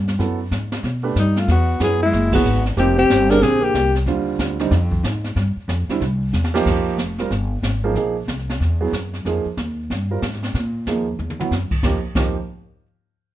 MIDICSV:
0, 0, Header, 1, 7, 480
1, 0, Start_track
1, 0, Key_signature, -3, "major"
1, 0, Tempo, 323625
1, 279, Time_signature, 4, 2, 24, 8
1, 19793, End_track
2, 0, Start_track
2, 0, Title_t, "Alto saxophone"
2, 0, Program_c, 0, 65
2, 1759, Note_on_c, 0, 63, 78
2, 2073, Note_on_c, 0, 65, 74
2, 2095, Note_off_c, 0, 63, 0
2, 2225, Note_off_c, 0, 65, 0
2, 2246, Note_on_c, 0, 66, 89
2, 2670, Note_off_c, 0, 66, 0
2, 2719, Note_on_c, 0, 68, 88
2, 2981, Note_off_c, 0, 68, 0
2, 3004, Note_on_c, 0, 64, 89
2, 3440, Note_off_c, 0, 64, 0
2, 3480, Note_on_c, 0, 66, 81
2, 3917, Note_off_c, 0, 66, 0
2, 4139, Note_on_c, 0, 67, 88
2, 4410, Note_off_c, 0, 67, 0
2, 4431, Note_on_c, 0, 67, 102
2, 4903, Note_on_c, 0, 70, 103
2, 4926, Note_off_c, 0, 67, 0
2, 5077, Note_on_c, 0, 68, 100
2, 5099, Note_off_c, 0, 70, 0
2, 5392, Note_on_c, 0, 67, 94
2, 5415, Note_off_c, 0, 68, 0
2, 5866, Note_off_c, 0, 67, 0
2, 19793, End_track
3, 0, Start_track
3, 0, Title_t, "Grand piano"
3, 0, Program_c, 1, 0
3, 281, Note_on_c, 1, 64, 52
3, 282, Note_on_c, 1, 59, 59
3, 287, Note_on_c, 1, 54, 57
3, 295, Note_on_c, 1, 69, 69
3, 552, Note_off_c, 1, 59, 0
3, 552, Note_off_c, 1, 64, 0
3, 554, Note_off_c, 1, 54, 0
3, 559, Note_off_c, 1, 69, 0
3, 1530, Note_on_c, 1, 57, 70
3, 1534, Note_on_c, 1, 67, 59
3, 1535, Note_on_c, 1, 62, 57
3, 1542, Note_on_c, 1, 71, 69
3, 1696, Note_off_c, 1, 57, 0
3, 1698, Note_off_c, 1, 62, 0
3, 1698, Note_off_c, 1, 67, 0
3, 1702, Note_off_c, 1, 71, 0
3, 2674, Note_on_c, 1, 54, 68
3, 2682, Note_on_c, 1, 59, 59
3, 2689, Note_on_c, 1, 68, 70
3, 2693, Note_on_c, 1, 64, 60
3, 2948, Note_off_c, 1, 54, 0
3, 2952, Note_off_c, 1, 59, 0
3, 2955, Note_off_c, 1, 68, 0
3, 2957, Note_off_c, 1, 64, 0
3, 3456, Note_on_c, 1, 59, 58
3, 3460, Note_on_c, 1, 54, 67
3, 3463, Note_on_c, 1, 64, 62
3, 3464, Note_on_c, 1, 68, 76
3, 3619, Note_off_c, 1, 59, 0
3, 3621, Note_off_c, 1, 54, 0
3, 3622, Note_off_c, 1, 64, 0
3, 3623, Note_off_c, 1, 68, 0
3, 4110, Note_on_c, 1, 53, 67
3, 4113, Note_on_c, 1, 58, 62
3, 4114, Note_on_c, 1, 67, 68
3, 4116, Note_on_c, 1, 63, 62
3, 4386, Note_off_c, 1, 53, 0
3, 4387, Note_off_c, 1, 58, 0
3, 4388, Note_off_c, 1, 67, 0
3, 4389, Note_off_c, 1, 63, 0
3, 4902, Note_on_c, 1, 67, 66
3, 4908, Note_on_c, 1, 60, 66
3, 4910, Note_on_c, 1, 50, 63
3, 4910, Note_on_c, 1, 68, 75
3, 5524, Note_off_c, 1, 67, 0
3, 5527, Note_off_c, 1, 60, 0
3, 5528, Note_off_c, 1, 50, 0
3, 5528, Note_off_c, 1, 68, 0
3, 6043, Note_on_c, 1, 50, 71
3, 6045, Note_on_c, 1, 55, 65
3, 6048, Note_on_c, 1, 60, 59
3, 6057, Note_on_c, 1, 65, 73
3, 6762, Note_off_c, 1, 50, 0
3, 6763, Note_off_c, 1, 55, 0
3, 6764, Note_off_c, 1, 60, 0
3, 6769, Note_off_c, 1, 65, 0
3, 6825, Note_on_c, 1, 50, 67
3, 6828, Note_on_c, 1, 55, 66
3, 6828, Note_on_c, 1, 60, 68
3, 6831, Note_on_c, 1, 63, 86
3, 6983, Note_off_c, 1, 50, 0
3, 6985, Note_off_c, 1, 55, 0
3, 6985, Note_off_c, 1, 60, 0
3, 6986, Note_off_c, 1, 63, 0
3, 8747, Note_on_c, 1, 55, 62
3, 8757, Note_on_c, 1, 50, 64
3, 8757, Note_on_c, 1, 60, 53
3, 8766, Note_on_c, 1, 64, 74
3, 8904, Note_off_c, 1, 55, 0
3, 8909, Note_off_c, 1, 50, 0
3, 8909, Note_off_c, 1, 60, 0
3, 8913, Note_off_c, 1, 64, 0
3, 9700, Note_on_c, 1, 53, 90
3, 9708, Note_on_c, 1, 63, 78
3, 9709, Note_on_c, 1, 58, 87
3, 9709, Note_on_c, 1, 67, 98
3, 10323, Note_off_c, 1, 53, 0
3, 10326, Note_off_c, 1, 63, 0
3, 10327, Note_off_c, 1, 58, 0
3, 10327, Note_off_c, 1, 67, 0
3, 10668, Note_on_c, 1, 60, 57
3, 10669, Note_on_c, 1, 55, 60
3, 10674, Note_on_c, 1, 65, 54
3, 10679, Note_on_c, 1, 70, 67
3, 10825, Note_off_c, 1, 55, 0
3, 10825, Note_off_c, 1, 60, 0
3, 10828, Note_off_c, 1, 65, 0
3, 10830, Note_off_c, 1, 70, 0
3, 11628, Note_on_c, 1, 53, 77
3, 11632, Note_on_c, 1, 58, 67
3, 11638, Note_on_c, 1, 68, 76
3, 11640, Note_on_c, 1, 63, 66
3, 11778, Note_off_c, 1, 53, 0
3, 11786, Note_off_c, 1, 63, 0
3, 11793, Note_off_c, 1, 68, 0
3, 11794, Note_off_c, 1, 58, 0
3, 11800, Note_on_c, 1, 53, 59
3, 11809, Note_on_c, 1, 63, 61
3, 11815, Note_on_c, 1, 68, 76
3, 11816, Note_on_c, 1, 58, 51
3, 12071, Note_off_c, 1, 53, 0
3, 12075, Note_off_c, 1, 63, 0
3, 12079, Note_off_c, 1, 58, 0
3, 12079, Note_off_c, 1, 68, 0
3, 13061, Note_on_c, 1, 64, 54
3, 13062, Note_on_c, 1, 54, 66
3, 13064, Note_on_c, 1, 68, 74
3, 13066, Note_on_c, 1, 59, 58
3, 13222, Note_off_c, 1, 64, 0
3, 13223, Note_off_c, 1, 54, 0
3, 13224, Note_off_c, 1, 59, 0
3, 13224, Note_off_c, 1, 68, 0
3, 13739, Note_on_c, 1, 53, 59
3, 13744, Note_on_c, 1, 58, 56
3, 13745, Note_on_c, 1, 63, 57
3, 13748, Note_on_c, 1, 68, 69
3, 14001, Note_off_c, 1, 53, 0
3, 14003, Note_off_c, 1, 58, 0
3, 14004, Note_off_c, 1, 63, 0
3, 14006, Note_off_c, 1, 68, 0
3, 14990, Note_on_c, 1, 55, 50
3, 14994, Note_on_c, 1, 60, 45
3, 14998, Note_on_c, 1, 65, 51
3, 14998, Note_on_c, 1, 70, 62
3, 15147, Note_off_c, 1, 55, 0
3, 15149, Note_off_c, 1, 60, 0
3, 15150, Note_off_c, 1, 65, 0
3, 15151, Note_off_c, 1, 70, 0
3, 16126, Note_on_c, 1, 63, 54
3, 16130, Note_on_c, 1, 53, 57
3, 16131, Note_on_c, 1, 58, 48
3, 16138, Note_on_c, 1, 68, 61
3, 16394, Note_off_c, 1, 63, 0
3, 16397, Note_off_c, 1, 53, 0
3, 16397, Note_off_c, 1, 58, 0
3, 16401, Note_off_c, 1, 68, 0
3, 16903, Note_on_c, 1, 54, 62
3, 16905, Note_on_c, 1, 59, 52
3, 16907, Note_on_c, 1, 66, 63
3, 16913, Note_on_c, 1, 64, 52
3, 17063, Note_off_c, 1, 54, 0
3, 17064, Note_off_c, 1, 59, 0
3, 17065, Note_off_c, 1, 66, 0
3, 17068, Note_off_c, 1, 64, 0
3, 17566, Note_on_c, 1, 53, 62
3, 17576, Note_on_c, 1, 63, 58
3, 17578, Note_on_c, 1, 58, 55
3, 17579, Note_on_c, 1, 67, 69
3, 17744, Note_off_c, 1, 53, 0
3, 17749, Note_off_c, 1, 63, 0
3, 17750, Note_off_c, 1, 58, 0
3, 17750, Note_off_c, 1, 67, 0
3, 18038, Note_on_c, 1, 53, 63
3, 18048, Note_on_c, 1, 63, 56
3, 18049, Note_on_c, 1, 58, 55
3, 18059, Note_on_c, 1, 67, 63
3, 18310, Note_off_c, 1, 53, 0
3, 18315, Note_off_c, 1, 63, 0
3, 18316, Note_off_c, 1, 58, 0
3, 18321, Note_off_c, 1, 67, 0
3, 19793, End_track
4, 0, Start_track
4, 0, Title_t, "Alto saxophone"
4, 0, Program_c, 2, 65
4, 1770, Note_on_c, 2, 55, 65
4, 2054, Note_on_c, 2, 57, 65
4, 2077, Note_off_c, 2, 55, 0
4, 2216, Note_off_c, 2, 57, 0
4, 2236, Note_on_c, 2, 59, 75
4, 2665, Note_off_c, 2, 59, 0
4, 2720, Note_on_c, 2, 59, 69
4, 2981, Note_off_c, 2, 59, 0
4, 3042, Note_on_c, 2, 56, 80
4, 3460, Note_off_c, 2, 56, 0
4, 3485, Note_on_c, 2, 59, 77
4, 3920, Note_off_c, 2, 59, 0
4, 4132, Note_on_c, 2, 60, 82
4, 4406, Note_off_c, 2, 60, 0
4, 4421, Note_on_c, 2, 60, 85
4, 4893, Note_on_c, 2, 62, 88
4, 4915, Note_off_c, 2, 60, 0
4, 5042, Note_on_c, 2, 60, 94
4, 5064, Note_off_c, 2, 62, 0
4, 5351, Note_on_c, 2, 58, 79
4, 5373, Note_off_c, 2, 60, 0
4, 5845, Note_off_c, 2, 58, 0
4, 19793, End_track
5, 0, Start_track
5, 0, Title_t, "Upright bass"
5, 0, Program_c, 3, 32
5, 0, Note_on_c, 3, 43, 92
5, 266, Note_off_c, 3, 43, 0
5, 279, Note_on_c, 3, 42, 83
5, 745, Note_off_c, 3, 42, 0
5, 761, Note_on_c, 3, 44, 87
5, 1225, Note_off_c, 3, 44, 0
5, 1235, Note_on_c, 3, 47, 92
5, 1703, Note_off_c, 3, 47, 0
5, 1714, Note_on_c, 3, 43, 86
5, 2182, Note_off_c, 3, 43, 0
5, 2192, Note_on_c, 3, 40, 88
5, 2661, Note_off_c, 3, 40, 0
5, 2670, Note_on_c, 3, 42, 94
5, 3140, Note_off_c, 3, 42, 0
5, 3146, Note_on_c, 3, 30, 97
5, 3618, Note_off_c, 3, 30, 0
5, 3624, Note_on_c, 3, 32, 84
5, 4097, Note_off_c, 3, 32, 0
5, 4104, Note_on_c, 3, 29, 88
5, 4577, Note_off_c, 3, 29, 0
5, 4593, Note_on_c, 3, 31, 88
5, 5061, Note_off_c, 3, 31, 0
5, 5073, Note_on_c, 3, 34, 91
5, 5541, Note_off_c, 3, 34, 0
5, 5551, Note_on_c, 3, 36, 89
5, 6016, Note_off_c, 3, 36, 0
5, 6025, Note_on_c, 3, 39, 86
5, 6497, Note_off_c, 3, 39, 0
5, 6509, Note_on_c, 3, 38, 82
5, 6979, Note_off_c, 3, 38, 0
5, 6985, Note_on_c, 3, 41, 98
5, 7457, Note_off_c, 3, 41, 0
5, 7466, Note_on_c, 3, 44, 92
5, 7937, Note_off_c, 3, 44, 0
5, 7946, Note_on_c, 3, 43, 84
5, 8232, Note_off_c, 3, 43, 0
5, 8424, Note_on_c, 3, 41, 96
5, 8711, Note_off_c, 3, 41, 0
5, 8908, Note_on_c, 3, 36, 95
5, 9379, Note_off_c, 3, 36, 0
5, 9388, Note_on_c, 3, 40, 89
5, 9859, Note_off_c, 3, 40, 0
5, 9875, Note_on_c, 3, 41, 74
5, 10342, Note_off_c, 3, 41, 0
5, 10348, Note_on_c, 3, 29, 82
5, 10819, Note_off_c, 3, 29, 0
5, 10833, Note_on_c, 3, 31, 85
5, 11301, Note_off_c, 3, 31, 0
5, 11310, Note_on_c, 3, 32, 76
5, 11780, Note_off_c, 3, 32, 0
5, 11793, Note_on_c, 3, 34, 80
5, 12262, Note_off_c, 3, 34, 0
5, 12273, Note_on_c, 3, 36, 76
5, 12742, Note_off_c, 3, 36, 0
5, 12759, Note_on_c, 3, 40, 84
5, 13225, Note_off_c, 3, 40, 0
5, 13237, Note_on_c, 3, 42, 84
5, 13704, Note_off_c, 3, 42, 0
5, 13717, Note_on_c, 3, 41, 82
5, 13999, Note_off_c, 3, 41, 0
5, 14199, Note_on_c, 3, 39, 87
5, 14665, Note_off_c, 3, 39, 0
5, 14686, Note_on_c, 3, 43, 90
5, 15149, Note_off_c, 3, 43, 0
5, 15160, Note_on_c, 3, 44, 88
5, 15626, Note_off_c, 3, 44, 0
5, 15635, Note_on_c, 3, 46, 81
5, 16103, Note_off_c, 3, 46, 0
5, 16115, Note_on_c, 3, 39, 82
5, 16583, Note_off_c, 3, 39, 0
5, 16594, Note_on_c, 3, 40, 82
5, 17059, Note_off_c, 3, 40, 0
5, 17068, Note_on_c, 3, 42, 78
5, 17354, Note_off_c, 3, 42, 0
5, 17547, Note_on_c, 3, 39, 79
5, 17721, Note_off_c, 3, 39, 0
5, 18023, Note_on_c, 3, 39, 83
5, 18311, Note_off_c, 3, 39, 0
5, 19793, End_track
6, 0, Start_track
6, 0, Title_t, "Muted upright bass strokes"
6, 8255, Note_on_c, 9, 29, 41
6, 8403, Note_off_c, 9, 29, 0
6, 8734, Note_on_c, 9, 29, 40
6, 8882, Note_off_c, 9, 29, 0
6, 14018, Note_on_c, 9, 29, 39
6, 14166, Note_off_c, 9, 29, 0
6, 17367, Note_on_c, 9, 29, 38
6, 17515, Note_off_c, 9, 29, 0
6, 19793, End_track
7, 0, Start_track
7, 0, Title_t, "Drums"
7, 115, Note_on_c, 9, 38, 44
7, 263, Note_off_c, 9, 38, 0
7, 288, Note_on_c, 9, 25, 46
7, 288, Note_on_c, 9, 36, 26
7, 288, Note_on_c, 9, 38, 40
7, 436, Note_off_c, 9, 36, 0
7, 437, Note_off_c, 9, 38, 0
7, 763, Note_on_c, 9, 36, 19
7, 764, Note_on_c, 9, 38, 59
7, 764, Note_on_c, 9, 44, 60
7, 911, Note_off_c, 9, 36, 0
7, 912, Note_off_c, 9, 38, 0
7, 912, Note_off_c, 9, 44, 0
7, 1067, Note_on_c, 9, 38, 71
7, 1215, Note_off_c, 9, 38, 0
7, 1242, Note_on_c, 9, 36, 19
7, 1244, Note_off_c, 9, 25, 0
7, 1244, Note_on_c, 9, 25, 39
7, 1244, Note_on_c, 9, 38, 45
7, 1390, Note_off_c, 9, 36, 0
7, 1392, Note_off_c, 9, 38, 0
7, 1719, Note_on_c, 9, 36, 18
7, 1722, Note_on_c, 9, 38, 61
7, 1722, Note_on_c, 9, 44, 54
7, 1868, Note_off_c, 9, 36, 0
7, 1870, Note_off_c, 9, 38, 0
7, 1870, Note_off_c, 9, 44, 0
7, 2024, Note_on_c, 9, 38, 39
7, 2172, Note_off_c, 9, 38, 0
7, 2196, Note_on_c, 9, 36, 20
7, 2198, Note_off_c, 9, 25, 0
7, 2198, Note_on_c, 9, 25, 47
7, 2198, Note_on_c, 9, 38, 46
7, 2344, Note_off_c, 9, 36, 0
7, 2347, Note_off_c, 9, 38, 0
7, 2672, Note_on_c, 9, 38, 67
7, 2672, Note_on_c, 9, 44, 61
7, 2674, Note_on_c, 9, 36, 18
7, 2820, Note_off_c, 9, 38, 0
7, 2820, Note_off_c, 9, 44, 0
7, 2822, Note_off_c, 9, 36, 0
7, 3151, Note_on_c, 9, 36, 24
7, 3154, Note_off_c, 9, 25, 0
7, 3154, Note_on_c, 9, 25, 55
7, 3154, Note_on_c, 9, 38, 45
7, 3300, Note_off_c, 9, 36, 0
7, 3303, Note_off_c, 9, 38, 0
7, 3450, Note_on_c, 9, 49, 76
7, 3451, Note_on_c, 9, 36, 81
7, 3598, Note_off_c, 9, 49, 0
7, 3600, Note_off_c, 9, 36, 0
7, 3636, Note_on_c, 9, 44, 55
7, 3784, Note_off_c, 9, 44, 0
7, 3936, Note_on_c, 9, 38, 39
7, 4084, Note_off_c, 9, 38, 0
7, 4111, Note_off_c, 9, 25, 0
7, 4111, Note_on_c, 9, 25, 42
7, 4111, Note_on_c, 9, 36, 22
7, 4111, Note_on_c, 9, 38, 48
7, 4259, Note_off_c, 9, 38, 0
7, 4260, Note_off_c, 9, 36, 0
7, 4595, Note_on_c, 9, 36, 19
7, 4598, Note_on_c, 9, 38, 70
7, 4598, Note_on_c, 9, 44, 68
7, 4743, Note_off_c, 9, 36, 0
7, 4747, Note_off_c, 9, 38, 0
7, 4747, Note_off_c, 9, 44, 0
7, 4898, Note_on_c, 9, 38, 48
7, 5047, Note_off_c, 9, 38, 0
7, 5074, Note_on_c, 9, 36, 26
7, 5076, Note_off_c, 9, 25, 0
7, 5076, Note_on_c, 9, 25, 53
7, 5076, Note_on_c, 9, 38, 51
7, 5222, Note_off_c, 9, 36, 0
7, 5224, Note_off_c, 9, 38, 0
7, 5552, Note_on_c, 9, 36, 19
7, 5558, Note_on_c, 9, 38, 63
7, 5558, Note_on_c, 9, 44, 54
7, 5700, Note_off_c, 9, 36, 0
7, 5706, Note_off_c, 9, 38, 0
7, 5706, Note_off_c, 9, 44, 0
7, 5858, Note_on_c, 9, 38, 42
7, 6006, Note_off_c, 9, 38, 0
7, 6031, Note_on_c, 9, 36, 26
7, 6033, Note_off_c, 9, 25, 0
7, 6033, Note_on_c, 9, 25, 49
7, 6033, Note_on_c, 9, 38, 44
7, 6180, Note_off_c, 9, 36, 0
7, 6182, Note_off_c, 9, 38, 0
7, 6510, Note_on_c, 9, 36, 27
7, 6516, Note_on_c, 9, 38, 62
7, 6516, Note_on_c, 9, 44, 54
7, 6659, Note_off_c, 9, 36, 0
7, 6664, Note_off_c, 9, 38, 0
7, 6664, Note_off_c, 9, 44, 0
7, 6814, Note_on_c, 9, 38, 49
7, 6963, Note_off_c, 9, 38, 0
7, 6990, Note_on_c, 9, 36, 25
7, 6991, Note_off_c, 9, 25, 0
7, 6991, Note_on_c, 9, 25, 47
7, 6991, Note_on_c, 9, 38, 50
7, 7138, Note_off_c, 9, 36, 0
7, 7139, Note_off_c, 9, 38, 0
7, 7291, Note_on_c, 9, 36, 64
7, 7439, Note_off_c, 9, 36, 0
7, 7471, Note_on_c, 9, 36, 18
7, 7478, Note_on_c, 9, 38, 62
7, 7478, Note_on_c, 9, 44, 55
7, 7619, Note_off_c, 9, 36, 0
7, 7626, Note_off_c, 9, 38, 0
7, 7626, Note_off_c, 9, 44, 0
7, 7778, Note_on_c, 9, 38, 43
7, 7926, Note_off_c, 9, 38, 0
7, 7951, Note_on_c, 9, 36, 21
7, 7952, Note_off_c, 9, 25, 0
7, 7952, Note_on_c, 9, 25, 50
7, 7952, Note_on_c, 9, 38, 49
7, 8099, Note_off_c, 9, 36, 0
7, 8101, Note_off_c, 9, 38, 0
7, 8432, Note_on_c, 9, 36, 25
7, 8437, Note_on_c, 9, 38, 69
7, 8437, Note_on_c, 9, 44, 64
7, 8580, Note_off_c, 9, 36, 0
7, 8585, Note_off_c, 9, 38, 0
7, 8585, Note_off_c, 9, 44, 0
7, 8742, Note_on_c, 9, 38, 49
7, 8890, Note_off_c, 9, 38, 0
7, 8914, Note_on_c, 9, 36, 25
7, 8920, Note_off_c, 9, 25, 0
7, 8920, Note_on_c, 9, 25, 58
7, 8920, Note_on_c, 9, 38, 50
7, 9062, Note_off_c, 9, 36, 0
7, 9068, Note_off_c, 9, 38, 0
7, 9394, Note_on_c, 9, 38, 49
7, 9394, Note_on_c, 9, 44, 62
7, 9542, Note_off_c, 9, 38, 0
7, 9542, Note_off_c, 9, 44, 0
7, 9556, Note_on_c, 9, 38, 65
7, 9704, Note_off_c, 9, 38, 0
7, 9720, Note_on_c, 9, 38, 82
7, 9868, Note_off_c, 9, 38, 0
7, 9878, Note_on_c, 9, 36, 69
7, 9884, Note_off_c, 9, 25, 0
7, 9884, Note_on_c, 9, 25, 41
7, 9884, Note_on_c, 9, 38, 43
7, 9884, Note_on_c, 9, 49, 71
7, 10027, Note_off_c, 9, 36, 0
7, 10033, Note_off_c, 9, 38, 0
7, 10033, Note_off_c, 9, 49, 0
7, 10356, Note_on_c, 9, 36, 19
7, 10360, Note_on_c, 9, 38, 62
7, 10360, Note_on_c, 9, 44, 57
7, 10504, Note_off_c, 9, 36, 0
7, 10508, Note_off_c, 9, 38, 0
7, 10508, Note_off_c, 9, 44, 0
7, 10655, Note_on_c, 9, 38, 42
7, 10803, Note_off_c, 9, 38, 0
7, 10834, Note_on_c, 9, 36, 17
7, 10839, Note_off_c, 9, 25, 0
7, 10839, Note_on_c, 9, 25, 46
7, 10839, Note_on_c, 9, 38, 43
7, 10983, Note_off_c, 9, 36, 0
7, 10987, Note_off_c, 9, 38, 0
7, 11316, Note_on_c, 9, 36, 16
7, 11321, Note_on_c, 9, 38, 57
7, 11321, Note_on_c, 9, 44, 57
7, 11464, Note_off_c, 9, 36, 0
7, 11469, Note_off_c, 9, 38, 0
7, 11469, Note_off_c, 9, 44, 0
7, 11796, Note_on_c, 9, 36, 24
7, 11799, Note_off_c, 9, 25, 0
7, 11799, Note_on_c, 9, 25, 39
7, 11799, Note_on_c, 9, 38, 42
7, 11944, Note_off_c, 9, 36, 0
7, 11948, Note_off_c, 9, 38, 0
7, 12278, Note_on_c, 9, 36, 23
7, 12282, Note_on_c, 9, 38, 60
7, 12282, Note_on_c, 9, 44, 51
7, 12426, Note_off_c, 9, 36, 0
7, 12430, Note_off_c, 9, 38, 0
7, 12430, Note_off_c, 9, 44, 0
7, 12442, Note_on_c, 9, 38, 26
7, 12590, Note_off_c, 9, 38, 0
7, 12601, Note_on_c, 9, 38, 49
7, 12750, Note_off_c, 9, 38, 0
7, 12761, Note_on_c, 9, 36, 19
7, 12769, Note_off_c, 9, 25, 0
7, 12769, Note_on_c, 9, 25, 41
7, 12769, Note_on_c, 9, 38, 40
7, 12909, Note_off_c, 9, 36, 0
7, 12917, Note_off_c, 9, 38, 0
7, 13243, Note_on_c, 9, 36, 18
7, 13247, Note_on_c, 9, 38, 55
7, 13247, Note_on_c, 9, 44, 57
7, 13391, Note_off_c, 9, 36, 0
7, 13396, Note_off_c, 9, 38, 0
7, 13396, Note_off_c, 9, 44, 0
7, 13549, Note_on_c, 9, 38, 35
7, 13697, Note_off_c, 9, 38, 0
7, 13724, Note_off_c, 9, 25, 0
7, 13724, Note_on_c, 9, 25, 51
7, 13724, Note_on_c, 9, 36, 20
7, 13724, Note_on_c, 9, 38, 38
7, 13872, Note_off_c, 9, 36, 0
7, 13873, Note_off_c, 9, 38, 0
7, 14201, Note_on_c, 9, 38, 59
7, 14201, Note_on_c, 9, 44, 57
7, 14205, Note_on_c, 9, 36, 21
7, 14349, Note_off_c, 9, 38, 0
7, 14349, Note_off_c, 9, 44, 0
7, 14353, Note_off_c, 9, 36, 0
7, 14686, Note_on_c, 9, 36, 21
7, 14689, Note_off_c, 9, 25, 0
7, 14689, Note_on_c, 9, 25, 45
7, 14689, Note_on_c, 9, 38, 45
7, 14835, Note_off_c, 9, 36, 0
7, 14837, Note_off_c, 9, 38, 0
7, 15163, Note_on_c, 9, 38, 54
7, 15163, Note_on_c, 9, 44, 50
7, 15164, Note_on_c, 9, 36, 15
7, 15311, Note_off_c, 9, 38, 0
7, 15311, Note_off_c, 9, 44, 0
7, 15312, Note_off_c, 9, 36, 0
7, 15328, Note_on_c, 9, 38, 30
7, 15467, Note_off_c, 9, 38, 0
7, 15467, Note_on_c, 9, 38, 39
7, 15483, Note_off_c, 9, 38, 0
7, 15483, Note_on_c, 9, 38, 41
7, 15632, Note_off_c, 9, 38, 0
7, 15639, Note_on_c, 9, 36, 16
7, 15641, Note_off_c, 9, 25, 0
7, 15641, Note_on_c, 9, 25, 41
7, 15641, Note_on_c, 9, 38, 40
7, 15788, Note_off_c, 9, 36, 0
7, 15789, Note_off_c, 9, 38, 0
7, 16118, Note_on_c, 9, 36, 18
7, 16119, Note_on_c, 9, 38, 62
7, 16119, Note_on_c, 9, 44, 49
7, 16266, Note_off_c, 9, 36, 0
7, 16267, Note_off_c, 9, 38, 0
7, 16267, Note_off_c, 9, 44, 0
7, 16602, Note_on_c, 9, 47, 40
7, 16750, Note_off_c, 9, 47, 0
7, 16762, Note_on_c, 9, 47, 54
7, 16910, Note_off_c, 9, 47, 0
7, 16916, Note_on_c, 9, 47, 71
7, 16973, Note_off_c, 9, 25, 0
7, 17064, Note_off_c, 9, 47, 0
7, 17085, Note_on_c, 9, 38, 49
7, 17085, Note_on_c, 9, 44, 43
7, 17233, Note_off_c, 9, 38, 0
7, 17233, Note_off_c, 9, 44, 0
7, 17371, Note_on_c, 9, 36, 72
7, 17373, Note_on_c, 9, 49, 64
7, 17519, Note_off_c, 9, 36, 0
7, 17521, Note_off_c, 9, 49, 0
7, 17547, Note_on_c, 9, 36, 72
7, 17549, Note_on_c, 9, 38, 73
7, 17696, Note_off_c, 9, 36, 0
7, 17698, Note_off_c, 9, 38, 0
7, 18025, Note_on_c, 9, 36, 80
7, 18029, Note_on_c, 9, 38, 72
7, 18029, Note_on_c, 9, 49, 73
7, 18173, Note_off_c, 9, 36, 0
7, 18178, Note_off_c, 9, 38, 0
7, 18178, Note_off_c, 9, 49, 0
7, 19793, End_track
0, 0, End_of_file